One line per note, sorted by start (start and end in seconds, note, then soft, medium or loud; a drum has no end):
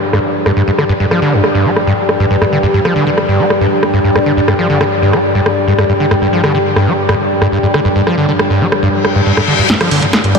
0.00 9.68 G2 medium
0.00 10.39 G4 medium
0.00 10.39 D5 medium
0.00 10.39 G5 medium
0.13 0.19 G2 medium
0.13 cross-stick medium
0.46 0.52 G2 medium
0.46 cross-stick medium
0.57 0.63 G2 medium
0.68 0.71 G2 medium
0.78 0.84 D3 medium
0.78 cross-stick medium
0.89 0.93 G2 loud
1.00 1.06 G2 medium
1.11 1.20 F3 medium
1.11 cross-stick medium
1.22 1.34 D3 loud
1.33 1.42 G2 medium
1.44 cross-stick medium
1.55 1.67 G2 medium
1.65 1.71 G3 loud
1.76 cross-stick medium
1.87 1.93 G2 medium
2.09 cross-stick medium
2.20 2.26 G2 medium
2.31 2.37 G2 medium
2.42 2.45 G2 medium
2.42 cross-stick medium
2.52 2.58 D3 medium
2.63 2.67 G2 loud
2.74 2.80 G2 medium
2.85 2.94 F3 medium
2.85 cross-stick medium
2.96 3.05 D3 loud
3.07 3.10 D3 medium
3.17 cross-stick medium
3.28 3.41 G2 medium
3.39 3.45 G3 loud
3.50 cross-stick medium
3.61 3.67 G2 medium
3.83 cross-stick medium
3.94 4.00 G2 medium
4.04 4.10 G2 medium
4.15 4.19 G2 medium
4.15 cross-stick medium
4.26 4.32 D3 medium
4.37 4.41 G2 loud
4.48 4.54 G2 medium
4.48 cross-stick medium
4.59 4.68 F3 medium
4.70 4.79 D3 loud
4.81 4.84 D3 medium
4.81 cross-stick medium
5.02 5.15 G2 medium
5.13 5.19 G3 loud
5.13 cross-stick medium
5.35 5.41 G2 medium
5.46 cross-stick medium
5.68 5.74 G2 medium
5.78 5.84 G2 medium
5.78 cross-stick medium
5.89 5.93 G2 medium
6.00 6.06 D3 medium
6.11 6.15 G2 loud
6.11 cross-stick medium
6.22 6.28 G2 medium
6.33 6.42 F3 medium
6.44 6.53 D3 loud
6.44 cross-stick medium
6.55 6.58 D3 medium
6.76 6.89 G2 medium
6.76 cross-stick medium
6.87 6.93 G3 loud
7.09 7.15 G2 medium
7.09 cross-stick medium
7.42 7.47 G2 medium
7.42 cross-stick medium
7.52 7.58 G2 medium
7.63 7.67 G2 medium
7.74 7.80 D3 medium
7.74 cross-stick medium
7.85 7.89 G2 loud
7.96 8.02 G2 medium
8.07 8.16 F3 medium
8.07 cross-stick medium
8.18 8.27 D3 loud
8.29 8.32 D3 medium
8.39 cross-stick medium
8.50 8.63 G2 medium
8.61 8.67 G3 loud
8.72 cross-stick medium
8.83 8.89 G2 medium
8.83 reverse cymbal medium
9.05 cross-stick medium
9.15 9.21 G2 medium
9.26 9.32 G2 medium
9.37 9.41 G2 medium
9.37 cross-stick medium
9.48 9.54 D3 medium
9.59 9.62 G2 loud
9.70 10.39 G2 medium
9.70 9.76 G2 medium
9.70 kick loud
9.70 snare soft
9.70 closed hi-hat medium
9.70 riser medium
9.81 9.90 F3 medium
9.81 cross-stick medium
9.81 closed hi-hat medium
9.91 10.00 D3 loud
9.91 open hi-hat loud
10.02 10.06 D3 medium
10.02 closed hi-hat medium
10.13 kick loud
10.13 cross-stick medium
10.13 snare soft
10.13 closed hi-hat medium
10.24 10.36 G2 medium
10.24 closed hi-hat medium
10.35 10.39 G3 loud
10.35 10.39 G3 medium
10.35 10.39 D4 medium
10.35 10.39 G4 loud
10.35 open hi-hat loud